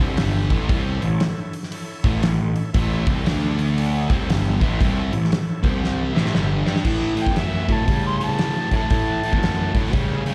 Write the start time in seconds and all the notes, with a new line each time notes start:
Already playing: E4
0.00 C2 C3 G3 C4 A4 C#5
0.17 G1 G2 D3 G3, snare, open hi-hat
0.48 A1 A2 E3 A3 E4 A4 C#5, kick, open hi-hat
0.68 C2 C3 G3 C4 E4 A4 C#5, kick, open hi-hat
1.02 A1 A2 E3, open hi-hat
1.20 snare, open hi-hat
1.53 open hi-hat
1.63 snare
1.71 E4 A4 C#5, open hi-hat
2.04 A1 A2 E3 A3, kick, open hi-hat
2.23 A1 A2 E3, snare, open hi-hat
2.54 E4 A4 C#5, open hi-hat
2.73 A1 A2 E3 A3 E4 A4 C#5, kick, open hi-hat
3.06 C2 C3 G3 C4, kick, open hi-hat
3.25 D2 D3 A3 D4 A4 D5, snare, open hi-hat
3.59 open hi-hat
3.77 D4 A4 C#5, open hi-hat
4.10 C2 C3 G3 C4 E4 A4 C#5, kick, open hi-hat
4.29 G1 G2 D3 G3, snare, open hi-hat
4.61 A1 A2 E3 A3 E4 A4 B4, kick, open hi-hat
4.80 C2 C3 G3 C4 E4 A4 C#5, kick, open hi-hat
5.12 A1 A2 E3, open hi-hat
5.24 snare
5.32 snare, open hi-hat
5.62 C2 C3 G3 C4 G4 C5, kick, open hi-hat
5.84 snare
6.13 A1 A2 E3 A3 E4 A4 C#5, snare
6.26 snare
6.33 G1 G2 D3 G3, snare
6.64 G2 G3 D4 E4 G4 A4 E5, snare
6.76 snare
6.84 A2 E3, kick, crash
7.16 A2 E3, open hi-hat
7.21 G5
7.27 F#2, kick, snare
7.36 A2 F#3 E5, snare, open hi-hat
7.68 A2 F#3 A5, kick, open hi-hat
7.88 A2 C#3 G3, kick, open hi-hat
8.07 C6
8.20 A2 G3 A5, open hi-hat
8.29 C#3
8.39 A2 F#3, snare, open hi-hat
8.71 A2 F#3, kick, open hi-hat
8.76 A5
8.90 A2 E3, kick, open hi-hat
9.24 A2 E3, open hi-hat
9.33 F#2, kick
9.43 A2 F#3, snare, open hi-hat
9.75 A2 F#3, kick, open hi-hat
9.85 snare
9.93 A2 C#3 G3, kick, open hi-hat
10.26 A2 G3, open hi-hat